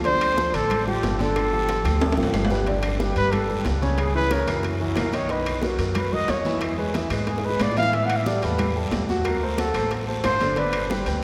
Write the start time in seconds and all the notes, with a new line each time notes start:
Already playing: D2
0.04 D3 D4 C5 D5, high bongo, high conga, high timbale, long guiro
0.21 high conga, high timbale, claves
0.37 F3 F4 A4, high bongo, high conga, low timbale, short guiro
0.53 A1 D3 D4 A4 D5, high conga, high timbale, short guiro
0.70 high bongo, high conga, low conga, high timbale, long guiro, claves
0.87 F3 F4 G4 A4, high conga, low conga
1.03 G1, high bongo, low bongo, high conga, high timbale, low timbale, short guiro
1.19 D3 D4 A4 D5, high conga, short guiro
1.35 high bongo, high conga, high timbale, long guiro, claves
1.52 F3 F4 G4, high conga
1.69 high bongo, high conga, high timbale, low timbale, short guiro
1.84 D2 F3 F4 G4, high bongo, high conga, high timbale, short guiro, claves
2.00 low bongo, high conga, high timbale, long guiro
2.12 high timbale
2.17 A1 F3 F4 G4, low bongo, high conga
2.23 low timbale
2.34 G1, low bongo, low conga, low timbale, short guiro, claves
2.45 low timbale
2.50 G3 G4 B4, low bongo, low conga, short guiro
2.55 low timbale
2.66 D3 D4 D5, high bongo, high conga, high timbale, long guiro
2.83 high conga, high timbale, claves
3.00 G3 G4 B4, high bongo, high conga, low timbale, short guiro
3.16 G2 G3 G4 B4, high conga, high timbale, short guiro
3.32 A4, high bongo, high conga, low conga, high timbale, long guiro, claves
3.48 G3 G4 B4, high conga, low conga
3.65 C#2, high bongo, low bongo, high conga, high timbale, low timbale, short guiro
3.82 C#3 C#4 C#5, high conga, short guiro
3.98 G#4, high bongo, high conga, high timbale, long guiro, claves
4.14 E3 E4 G#4 B4, high bongo, high conga
4.31 C#3 C#4 A#4 C#5, high bongo, high conga, high timbale, low timbale, short guiro
4.47 F#2 E3 E4 F#4, high bongo, high conga, high timbale, short guiro, claves
4.63 high bongo, high conga, high timbale, long guiro
4.80 E3 E4 F#4, high bongo, high conga
4.96 B1 A#4, high bongo, low bongo, high conga, high timbale, low timbale, short guiro, claves
5.13 D#3 D#4 C#5 D#5, high conga, high timbale, short guiro
5.29 D#3 D#4 B4 D#5, high bongo, high conga, high timbale, long guiro
5.46 high conga, high timbale, claves
5.62 F#3 F#4 A#4, high bongo, high conga, low timbale, short guiro
5.78 F#2 F#3 F#4 A#4, high conga, high timbale, short guiro
5.95 B4, high bongo, high conga, low conga, high timbale, long guiro, claves
6.12 F#3 F#4 A#4 D#5, high conga, low conga
6.28 E2 C#5, high bongo, low bongo, high conga, high timbale, low timbale, short guiro
6.45 E3 E4 E5, high conga, short guiro
6.61 high bongo, high conga, high timbale, long guiro, claves
6.78 G#3 G#4 B4, high bongo, high conga
6.94 E3 E4 E5, high bongo, high conga, high timbale, low timbale, short guiro
7.10 G#2 G#3 G#4 B4, high bongo, high conga, high timbale, short guiro, claves
7.27 G#4, high bongo, high conga, high timbale, long guiro
7.38 high bongo
7.44 G#3 G#4 B4, high conga
7.49 low bongo
7.60 A2 D5, high conga, high timbale, low timbale, short guiro, claves
7.72 low bongo
7.76 E3 E4 E5 F5, high conga, high timbale, short guiro
7.83 low bongo
7.93 E3 E4 E5, high bongo, high conga, high timbale, long guiro
8.06 F#5, high timbale
8.10 high conga, claves
8.16 E5
8.26 G3 G4 A4 D5, high bongo, high conga, low timbale, short guiro
8.42 E2 G3 G4 A4 B4, high conga, high timbale, short guiro
8.59 high bongo, high conga, low conga, high timbale, long guiro, claves
8.76 G3 G4 A4, high conga
8.91 D2, high bongo, low bongo, high conga, high timbale, low timbale, short guiro
9.09 F#3 F#4 F#5, high conga, short guiro
9.25 A#4, high bongo, high conga, high timbale, long guiro, claves
9.41 A3 A4 C5, high bongo, high conga
9.58 F#3 F#4 A4 F#5, high bongo, high conga, high timbale, low timbale, short guiro
9.74 A1 A3 A4 C5, high bongo, high conga, high timbale, short guiro, claves
9.91 high bongo, high conga, high timbale, long guiro
10.07 A3 A4 C5, high bongo, high conga
10.24 G1 C5, high bongo, low bongo, high conga, high timbale, low timbale, short guiro, claves
10.40 D3 D4 D5, high conga, high timbale, short guiro
10.56 D3 D4 B4 D5, high bongo, high conga, high timbale, long guiro
10.73 high conga, high timbale, claves
10.90 G3 G4 B4, high bongo, high conga, low timbale, short guiro
11.06 D2 G3 G4 B4, high conga, high timbale, short guiro